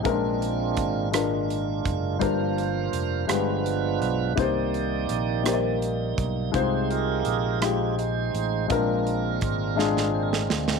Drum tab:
HH |x-x-x-x-x-x-|x-x-x-x-x-x-|x-x-x-x-x-x-|x-x-x-x-x-x-|
SD |------r-----|------r-----|------r-----|------r-----|
BD |o---o-----o-|o-----------|o---------o-|o-----------|

HH |x-x-x-------|
SD |------oo-ooo|
BD |o---o-------|